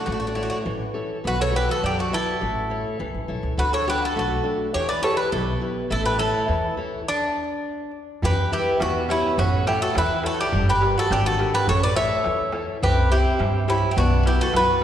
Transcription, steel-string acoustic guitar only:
0.06 0.64 A3 medium
0.35 0.82 E4 soft
0.35 0.83 A4 soft
0.35 0.83 C#5 medium
0.65 1.22 E3 medium
0.94 1.18 E4 soft
0.94 1.18 A4 soft
0.94 1.18 C#5 soft
1.24 1.52 B3 medium
1.52 1.99 F#4 soft
1.52 2.00 B4 soft
1.52 2.00 D5 soft
1.82 2.39 F#3 medium
2.11 2.35 F#4 soft
2.11 2.35 B4 soft
2.11 2.35 D5 soft
2.41 2.98 A3 medium
2.70 3.17 E4 soft
2.70 3.17 A4 soft
2.70 3.18 C#5 medium
3.00 3.56 E3 medium
3.28 3.52 E4 soft
3.28 3.52 A4 soft
3.28 3.53 C#5 soft
3.58 4.14 D3 medium
3.87 4.34 D4 soft
3.87 4.34 F#4 soft
3.87 4.34 A4 soft
4.16 4.72 A3 medium
4.44 4.68 D4 soft
4.44 4.68 F#4 soft
4.44 4.68 A4 soft
4.75 5.31 E3 medium
5.02 5.49 E4 soft
5.02 5.49 G4 soft
5.02 5.50 B4 soft
5.32 5.89 B2 medium
5.61 5.85 E4 soft
5.61 5.85 G4 soft
5.61 5.85 B4 soft
5.90 6.47 A3 medium
6.19 6.66 E4 soft
6.19 6.66 A4 soft
6.19 6.66 C#5 medium
6.48 7.05 E3 medium
6.77 7.01 E4 soft
6.77 7.01 A4 soft
6.77 7.01 C#5 soft
8.23 8.79 E3 medium
8.51 8.98 G3 soft
8.51 8.98 E4 soft
8.51 8.98 B4 medium
8.79 9.36 B2 medium
9.08 9.32 E4 soft
9.08 9.32 G4 soft
9.08 9.32 B4 soft
9.38 9.94 A3 medium
9.67 10.13 E4 soft
9.67 10.14 A4 soft
9.67 10.14 C#5 medium
9.95 10.51 E3 medium
10.23 10.47 E4 soft
10.23 10.47 A4 soft
10.23 10.47 C#5 soft
10.52 10.81 G3 medium
10.81 11.28 G4 soft
10.81 11.28 A#4 soft
10.81 11.28 D5 soft
11.10 11.66 D3 medium
11.38 11.62 G4 medium
11.38 11.62 A#4 soft
11.38 11.62 D5 soft
11.67 12.24 A3 medium
11.96 12.42 E4 medium
11.96 12.43 A4 soft
11.96 12.43 C#5 medium
12.25 12.81 E3 medium
12.53 12.76 E4 soft
12.53 12.77 A4 soft
12.53 12.77 C#5 soft
12.83 13.39 C4 medium
13.10 13.57 G4 soft
13.10 13.57 C5 soft
13.10 13.57 E5 medium
13.39 13.95 G3 medium
13.68 13.91 G4 soft
13.68 13.92 C5 soft
13.68 13.92 E5 soft
13.96 14.25 B3 medium
14.25 14.71 F#4 soft
14.25 14.71 B4 soft
14.25 14.71 D5 soft
14.54 14.84 F#3 medium

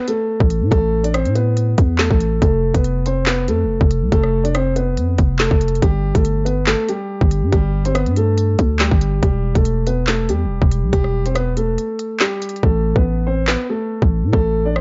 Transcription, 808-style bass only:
0.40 0.63 A1 loud
0.62 0.71 A2 loud
0.72 1.27 A1 loud
1.25 1.75 A2 loud
1.78 2.09 E2 loud
2.11 2.41 A1 loud
2.42 2.73 F1 loud
2.74 3.50 F1 loud
3.48 3.66 F2 loud
3.65 3.80 F1 loud
3.81 4.04 F1 loud
4.02 4.12 C2 loud
4.12 4.99 F1 loud
4.97 5.17 F2 loud
5.19 5.50 F1 loud
5.51 5.81 F1 loud
5.82 6.14 G1 loud
6.15 6.76 G1 loud
7.21 7.44 G1 loud
7.43 7.52 G2 loud
7.53 8.08 G1 loud
8.06 8.56 G2 loud
8.59 8.90 D2 loud
8.91 9.21 G1 loud
9.23 9.54 E1 loud
9.55 10.31 E1 loud
10.29 10.47 E2 loud
10.45 10.61 E1 loud
10.62 10.84 E1 loud
10.83 10.92 B1 loud
10.93 11.78 E1 loud
12.63 12.94 A1 loud
12.96 13.57 A1 loud
14.02 14.25 A1 loud
14.23 14.33 A2 loud
14.33 14.81 A1 loud

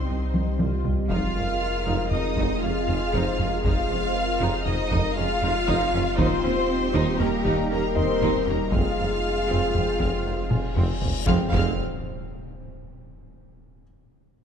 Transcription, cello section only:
0.00 0.85 C4 medium
1.10 2.08 F4 loud
2.12 2.63 D#4 loud
2.63 3.62 F4 loud
3.64 4.64 F4 loud
4.66 5.16 D#4 loud
5.17 6.16 F4 loud
6.19 7.20 C4 loud
7.20 7.70 A#3 loud
7.71 7.96 A#3 loud
7.97 8.47 C4 loud
8.48 8.73 A#3 medium
8.73 11.02 F4 loud
11.27 11.41 F3 loud
11.53 11.81 F3 loud

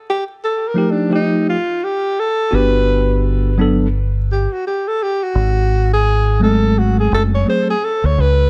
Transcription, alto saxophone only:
0.09 0.25 G4 medium
0.44 0.69 A4 medium
0.68 0.92 A#4 medium
0.91 1.13 D4 medium
1.15 1.46 D#4 medium
1.49 1.85 F4 medium
1.84 2.21 G4 medium
2.20 2.57 A4 loud
2.55 3.25 B4 loud
4.32 4.54 G4 medium
4.53 4.66 F#4 medium
4.67 4.89 G4 medium
4.88 5.04 A4 medium
5.03 5.24 G4 medium
5.23 5.93 F#4 medium
5.93 6.39 G#4 medium
6.43 6.80 A4 medium
6.79 6.98 F#4 medium
7.00 7.12 G#4 medium
7.14 7.23 A4 medium
7.34 7.47 C#5 medium
7.49 7.67 C5 medium
7.70 7.86 G#4 medium
7.84 8.07 A4 medium
8.06 8.22 C#5 medium
8.21 8.50 B4 loud

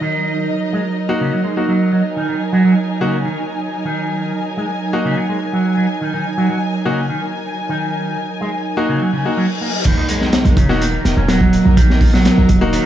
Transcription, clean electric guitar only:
0.01 0.48 D#3 medium
0.73 0.81 G#3 medium
1.21 1.29 C#3 medium
1.33 1.41 F#3 medium
1.44 1.53 G#3 medium
1.68 1.92 F#3 medium
1.93 2.01 F#3 medium
2.16 2.28 D#3 medium
2.29 2.40 D#3 medium
2.53 2.63 F#3 medium
2.64 2.73 F#3 medium
3.01 3.24 C#3 medium
3.25 3.36 D#3 medium
3.85 4.32 D#3 medium
4.57 4.66 G#3 medium
5.05 5.13 C#3 medium
5.17 5.25 F#3 medium
5.29 5.38 G#3 medium
5.53 5.76 F#3 medium
5.77 5.86 F#3 medium
6.01 6.12 D#3 medium
6.14 6.25 D#3 medium
6.37 6.48 F#3 medium
6.50 6.58 F#3 medium
6.86 7.08 C#3 medium
7.10 7.21 D#3 medium
7.69 8.16 D#3 medium
8.41 8.49 G#3 medium
8.89 8.97 C#3 medium
9.02 9.09 F#3 medium
9.13 9.24 C#3 medium
9.37 9.45 F#3 medium
9.61 9.70 A#3 medium
9.85 9.96 D#3 medium
9.98 10.05 D#4 medium
10.09 10.56 G#3 medium
10.57 10.68 C#3 loud
10.69 10.77 C#4 medium
10.81 11.16 D#3 medium
11.17 11.28 C#4 medium
11.29 11.76 F#3 medium
11.77 12.12 D#3 medium
12.13 12.60 F#3 medium
12.73 12.86 D#3 medium

